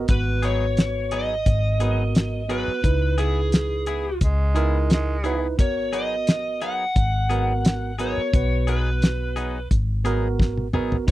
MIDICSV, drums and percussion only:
0, 0, Header, 1, 2, 480
1, 0, Start_track
1, 0, Key_signature, 5, "minor"
1, 0, Tempo, 687285
1, 65, Time_signature, 4, 2, 24, 8
1, 7759, End_track
2, 0, Start_track
2, 0, Title_t, "Drums"
2, 56, Note_on_c, 9, 42, 84
2, 61, Note_on_c, 9, 36, 104
2, 126, Note_off_c, 9, 42, 0
2, 131, Note_off_c, 9, 36, 0
2, 299, Note_on_c, 9, 42, 61
2, 369, Note_off_c, 9, 42, 0
2, 538, Note_on_c, 9, 42, 75
2, 548, Note_on_c, 9, 38, 97
2, 608, Note_off_c, 9, 42, 0
2, 618, Note_off_c, 9, 38, 0
2, 777, Note_on_c, 9, 42, 62
2, 846, Note_off_c, 9, 42, 0
2, 1021, Note_on_c, 9, 36, 80
2, 1021, Note_on_c, 9, 42, 93
2, 1090, Note_off_c, 9, 42, 0
2, 1091, Note_off_c, 9, 36, 0
2, 1259, Note_on_c, 9, 42, 66
2, 1328, Note_off_c, 9, 42, 0
2, 1501, Note_on_c, 9, 42, 81
2, 1512, Note_on_c, 9, 38, 105
2, 1571, Note_off_c, 9, 42, 0
2, 1582, Note_off_c, 9, 38, 0
2, 1743, Note_on_c, 9, 42, 53
2, 1813, Note_off_c, 9, 42, 0
2, 1983, Note_on_c, 9, 36, 114
2, 1983, Note_on_c, 9, 42, 75
2, 2052, Note_off_c, 9, 36, 0
2, 2053, Note_off_c, 9, 42, 0
2, 2222, Note_on_c, 9, 42, 64
2, 2292, Note_off_c, 9, 42, 0
2, 2460, Note_on_c, 9, 42, 82
2, 2471, Note_on_c, 9, 38, 101
2, 2530, Note_off_c, 9, 42, 0
2, 2541, Note_off_c, 9, 38, 0
2, 2699, Note_on_c, 9, 42, 59
2, 2769, Note_off_c, 9, 42, 0
2, 2939, Note_on_c, 9, 42, 80
2, 2941, Note_on_c, 9, 36, 87
2, 3009, Note_off_c, 9, 42, 0
2, 3011, Note_off_c, 9, 36, 0
2, 3183, Note_on_c, 9, 42, 57
2, 3253, Note_off_c, 9, 42, 0
2, 3421, Note_on_c, 9, 42, 77
2, 3432, Note_on_c, 9, 38, 110
2, 3491, Note_off_c, 9, 42, 0
2, 3502, Note_off_c, 9, 38, 0
2, 3664, Note_on_c, 9, 42, 52
2, 3734, Note_off_c, 9, 42, 0
2, 3902, Note_on_c, 9, 42, 82
2, 3903, Note_on_c, 9, 36, 106
2, 3972, Note_off_c, 9, 36, 0
2, 3972, Note_off_c, 9, 42, 0
2, 4143, Note_on_c, 9, 42, 64
2, 4213, Note_off_c, 9, 42, 0
2, 4380, Note_on_c, 9, 42, 85
2, 4391, Note_on_c, 9, 38, 103
2, 4450, Note_off_c, 9, 42, 0
2, 4460, Note_off_c, 9, 38, 0
2, 4620, Note_on_c, 9, 42, 53
2, 4689, Note_off_c, 9, 42, 0
2, 4860, Note_on_c, 9, 42, 77
2, 4861, Note_on_c, 9, 36, 89
2, 4929, Note_off_c, 9, 42, 0
2, 4931, Note_off_c, 9, 36, 0
2, 5101, Note_on_c, 9, 42, 67
2, 5171, Note_off_c, 9, 42, 0
2, 5341, Note_on_c, 9, 42, 92
2, 5351, Note_on_c, 9, 38, 114
2, 5411, Note_off_c, 9, 42, 0
2, 5421, Note_off_c, 9, 38, 0
2, 5582, Note_on_c, 9, 42, 58
2, 5652, Note_off_c, 9, 42, 0
2, 5821, Note_on_c, 9, 36, 115
2, 5821, Note_on_c, 9, 42, 81
2, 5891, Note_off_c, 9, 36, 0
2, 5891, Note_off_c, 9, 42, 0
2, 6060, Note_on_c, 9, 42, 64
2, 6130, Note_off_c, 9, 42, 0
2, 6300, Note_on_c, 9, 42, 84
2, 6311, Note_on_c, 9, 38, 106
2, 6370, Note_off_c, 9, 42, 0
2, 6380, Note_off_c, 9, 38, 0
2, 6542, Note_on_c, 9, 42, 54
2, 6612, Note_off_c, 9, 42, 0
2, 6781, Note_on_c, 9, 36, 81
2, 6782, Note_on_c, 9, 42, 76
2, 6851, Note_off_c, 9, 36, 0
2, 6852, Note_off_c, 9, 42, 0
2, 7023, Note_on_c, 9, 42, 60
2, 7092, Note_off_c, 9, 42, 0
2, 7260, Note_on_c, 9, 36, 82
2, 7271, Note_on_c, 9, 38, 67
2, 7330, Note_off_c, 9, 36, 0
2, 7341, Note_off_c, 9, 38, 0
2, 7386, Note_on_c, 9, 48, 58
2, 7456, Note_off_c, 9, 48, 0
2, 7497, Note_on_c, 9, 45, 80
2, 7567, Note_off_c, 9, 45, 0
2, 7627, Note_on_c, 9, 43, 77
2, 7697, Note_off_c, 9, 43, 0
2, 7737, Note_on_c, 9, 42, 77
2, 7759, Note_off_c, 9, 42, 0
2, 7759, End_track
0, 0, End_of_file